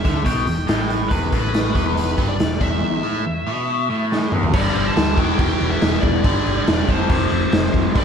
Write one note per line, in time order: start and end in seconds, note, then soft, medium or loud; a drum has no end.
0.00 0.13 E5 medium
0.04 0.25 D2 medium
0.04 0.24 D3 loud
0.04 kick medium
0.04 snare soft
0.04 closed hi-hat medium
0.14 0.25 E5 medium
0.25 0.46 B1 medium
0.25 0.46 B2 medium
0.25 0.90 G5 medium
0.25 kick loud
0.25 closed hi-hat medium
0.46 0.67 E1 medium
0.46 0.64 E2 medium
0.46 closed hi-hat medium
0.67 1.09 A1 medium
0.67 1.10 A2 medium
0.67 snare loud
0.67 closed hi-hat medium
0.90 closed hi-hat medium
1.09 1.31 E1 medium
1.09 1.32 E2 medium
1.09 1.39 B4 medium
1.09 kick loud
1.09 closed hi-hat medium
1.32 1.73 A1 medium
1.32 1.75 A2 loud
1.32 kick loud
1.32 closed hi-hat medium
1.40 1.72 B4 medium
1.54 snare medium
1.54 closed hi-hat medium
1.73 2.15 E1 medium
1.73 2.17 E2 medium
1.73 2.30 B4 medium
1.73 kick medium
1.73 snare soft
1.73 closed hi-hat medium
1.97 closed hi-hat medium
2.17 2.38 G1 medium
2.17 2.38 G2 medium
2.17 kick medium
2.17 closed hi-hat medium
2.28 2.52 D5 medium
2.39 2.60 E1 medium
2.39 2.57 E2 medium
2.39 snare loud
2.39 closed hi-hat medium
2.55 2.62 D5 medium
2.60 2.81 E1 medium
2.60 3.03 E2 medium
2.60 4.07 E5 medium
2.60 kick medium
2.60 closed hi-hat medium
3.03 3.24 A2 loud
3.25 3.42 E2 medium
3.47 3.89 B2 medium
3.90 4.32 A2 medium
4.12 snare medium
4.32 4.53 E2 medium
4.32 mid tom medium
4.43 floor tom medium
4.53 4.68 G1 loud
4.53 5.16 G2 medium
4.53 5.17 D3 medium
4.53 5.18 G3 medium
4.53 4.87 D5 medium
4.53 kick loud
4.53 crash loud
4.53 crash medium
4.75 4.89 G1 medium
4.75 crash medium
4.88 5.20 A5 medium
4.96 5.19 D2 medium
4.96 snare loud
4.96 crash medium
5.16 5.32 E1 medium
5.16 6.22 E2 medium
5.16 6.24 B2 medium
5.16 6.24 E3 loud
5.16 5.39 G5 medium
5.16 kick medium
5.16 crash medium
5.39 5.53 E1 loud
5.39 5.70 G5 loud
5.39 kick loud
5.39 crash medium
5.60 5.75 E1 medium
5.60 crash medium
5.71 6.01 E5 medium
5.82 5.97 E1 medium
5.82 snare loud
5.82 crash medium
6.01 6.24 E1 medium
6.01 6.56 D5 medium
6.01 kick medium
6.01 crash medium
6.23 6.39 G1 loud
6.23 6.86 G2 medium
6.23 6.87 D3 loud
6.23 6.88 G3 loud
6.23 kick loud
6.23 crash medium
6.46 6.60 G1 medium
6.46 crash medium
6.57 6.90 D5 medium
6.67 6.82 E1 loud
6.67 snare loud
6.67 crash medium
6.87 7.03 F1 medium
6.87 7.93 F2 loud
6.87 7.94 C3 loud
6.87 kick medium
6.87 crash medium
6.91 7.95 F3 loud
6.91 7.71 C5 medium
7.09 7.24 F1 medium
7.09 kick loud
7.09 crash loud
7.31 7.46 F1 medium
7.31 crash medium
7.52 7.67 F1 medium
7.52 snare loud
7.52 crash medium
7.74 7.88 F1 medium
7.74 kick medium
7.74 crash medium
7.94 8.05 G1 loud
7.94 8.05 G2 medium
7.94 8.05 D3 loud
7.94 8.05 G3 loud
7.94 8.05 D5 loud
7.94 kick loud
7.94 crash loud